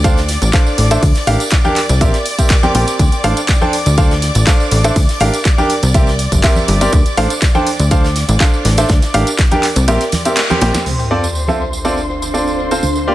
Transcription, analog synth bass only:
0.00 0.37 D2 medium
0.42 0.51 A1 medium
0.78 0.97 A1 medium
1.03 1.13 D2 medium
1.27 1.37 A1 medium
1.89 2.00 C2 medium
2.75 2.85 A#1 medium
2.99 3.09 D2 medium
3.24 3.34 A1 medium
3.86 4.31 D2 medium
4.35 4.44 A1 medium
4.72 4.91 A1 medium
4.96 5.06 D2 medium
5.21 5.31 A1 medium
5.83 6.27 C2 medium
6.32 6.41 G1 medium
6.68 6.88 G1 medium
6.93 7.03 D2 loud
7.17 7.27 A1 medium
7.80 8.24 D2 medium
8.29 8.38 A1 medium
8.65 8.84 A1 medium
8.90 9.00 D2 medium
9.14 9.24 A1 medium
9.76 9.87 C2 medium
9.88 9.98 A#1 loud
10.62 10.72 A#1 medium
10.86 12.81 D2 medium
12.83 13.15 D2 medium

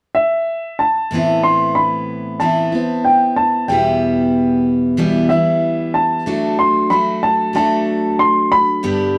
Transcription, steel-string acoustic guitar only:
1.11 2.39 A2 medium
1.11 2.40 E3 medium
1.11 2.41 B3 medium
1.11 2.40 C4 medium
1.15 2.42 E4 medium
2.40 2.73 A2 medium
2.40 2.73 E3 medium
2.40 2.73 B3 medium
2.40 2.73 C4 medium
2.40 2.71 E4 medium
2.72 3.70 B3 soft
2.72 3.71 C4 soft
2.72 3.69 E4 soft
3.68 4.96 E2 medium
3.68 4.96 B2 medium
3.68 4.97 E3 medium
3.68 4.97 G3 medium
3.68 4.98 B3 medium
3.72 4.98 E4 medium
4.97 5.30 E2 medium
4.97 5.30 B2 medium
4.97 5.30 E3 medium
4.97 5.30 G3 medium
4.97 5.30 B3 medium
4.97 5.28 E4 medium
5.29 6.26 E3 soft
5.29 6.26 G3 soft
5.29 6.26 B3 soft
5.29 6.26 E4 soft
6.26 6.89 F#3 medium
6.26 6.91 A3 medium
6.26 6.92 D4 medium
6.26 6.92 F#4 medium
6.90 7.52 F#3 soft
6.90 7.54 A3 soft
6.90 7.56 D4 soft
6.90 7.56 F#4 soft
7.53 8.83 F#3 medium
7.53 8.83 A3 medium
7.53 8.83 D4 medium
7.58 8.84 F#4 medium
8.83 9.18 G2 medium
8.83 9.18 D3 medium
8.83 9.18 G3 medium
8.83 9.18 B3 medium
8.83 9.18 D4 medium
8.83 9.18 G4 medium

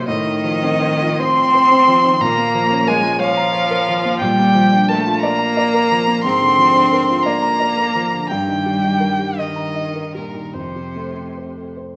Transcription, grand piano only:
0.00 0.11 F#3 medium
0.00 0.10 A#3 medium
0.00 0.10 D#4 medium
0.00 0.10 F#4 medium
0.00 0.10 C5 medium
0.00 0.11 D#5 medium
0.00 0.11 C6 medium
0.08 2.17 A2 medium
0.27 0.56 D#3 medium
0.44 0.74 F3 medium
0.62 0.93 C4 medium
0.82 1.11 C5 medium
1.02 1.30 F4 medium
1.20 1.48 C5 medium
1.38 1.65 C6 medium
1.54 1.81 C5 medium
1.72 1.98 C4 medium
1.88 2.14 F3 medium
2.04 2.21 D#3 medium
2.20 4.16 A#2 loud
2.37 2.64 A#3 medium
2.55 2.81 F3 medium
2.70 2.97 C#4 medium
2.87 3.14 A#4 medium
3.02 3.30 F4 medium
3.19 3.47 C#5 medium
3.37 3.64 A#5 medium
3.52 3.80 C#5 medium
3.71 3.97 A#4 medium
3.89 4.15 F3 medium
4.05 4.21 A#3 medium
4.21 6.20 A#2 loud
4.39 4.66 A#3 medium
4.55 4.82 F3 medium
4.73 4.99 D4 medium
4.89 5.16 A#4 medium
5.06 5.33 F4 medium
5.23 5.50 D5 medium
5.39 5.66 A#5 medium
5.57 5.83 D5 medium
5.74 6.00 A#4 medium
5.91 6.18 F3 medium
6.07 6.24 A#3 medium
6.24 8.27 G#2 medium
6.41 6.68 D3 medium
6.58 6.85 F3 medium
6.75 7.02 D4 medium
6.93 7.19 A#4 medium
7.10 7.37 F4 medium
7.26 7.53 D5 medium
7.42 7.70 A#5 medium
7.60 7.88 D5 medium
7.77 8.06 A#4 medium
7.95 8.23 F3 medium
8.13 8.31 D3 medium
8.31 10.52 G2 medium
8.47 8.76 D#3 medium
8.66 8.95 G3 medium
8.83 9.13 D#4 medium
9.00 9.31 A#4 medium
9.19 9.50 G4 medium
9.38 9.69 D#5 medium
9.56 9.88 A#5 medium
9.75 10.07 D#5 medium
9.96 10.27 A#4 soft
10.15 10.47 G3 soft
10.35 10.55 D#3 soft
10.54 11.96 F2 medium
10.76 11.08 C3 soft
10.96 11.28 A3 soft
11.16 11.48 C4 soft
11.37 11.69 C5 soft
11.57 11.88 A4 soft
11.77 11.96 C5 soft

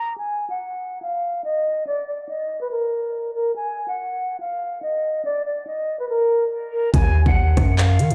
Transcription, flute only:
0.00 0.16 A#5 medium
0.18 0.48 G#5 loud
0.50 0.99 F#5 medium
1.02 1.42 F5 medium
1.44 1.84 D#5 loud
1.87 2.07 D5 loud
2.08 2.28 D5 medium
2.29 2.59 D#5 medium
2.61 2.71 B4 medium
2.71 3.31 A#4 medium
3.35 3.55 A#4 medium
3.56 3.86 G#5 loud
3.88 4.37 F#5 medium
4.40 4.80 F5 medium
4.82 5.22 D#5 medium
5.25 5.45 D5 loud
5.46 5.66 D5 medium
5.67 5.97 D#5 medium
6.00 6.09 B4 medium
6.09 6.45 A#4 medium
6.73 6.93 A#4 medium
6.94 7.24 G#5 loud
7.26 7.75 F#5 medium
7.78 8.15 F5 medium

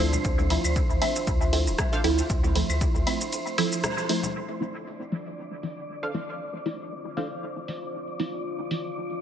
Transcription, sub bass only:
0.00 0.17 D2 medium
0.25 0.57 D2 loud
0.65 0.81 D2 medium
0.90 0.98 D2 loud
1.27 1.69 D2 medium
1.67 1.75 D1 medium
2.04 2.22 D2 medium
2.30 2.62 D2 loud
2.70 2.86 D2 medium
2.95 3.03 D2 loud

